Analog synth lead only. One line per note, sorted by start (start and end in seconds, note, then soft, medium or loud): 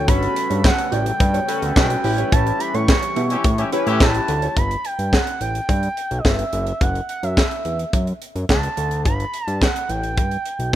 0.08 0.63 B5 loud
0.64 0.93 F#5 medium
0.91 1.75 G5 loud
1.76 2.34 G5 loud
2.32 2.61 A5 loud
2.60 2.76 B5 loud
2.74 3.58 C#6 loud
4.01 4.59 A5 loud
4.58 4.86 B5 loud
4.85 5.15 G5 loud
5.13 5.40 F#5 loud
5.41 6.20 G5 loud
6.19 6.27 D#5 medium
6.25 6.83 E5 medium
6.81 7.09 F#5 medium
7.09 7.25 F#5 medium
7.24 8.07 E5 medium
8.49 9.01 A5 medium
9.05 9.46 B5 loud
9.46 9.63 A5 loud
9.61 9.91 F#5 medium
9.89 10.73 G5 medium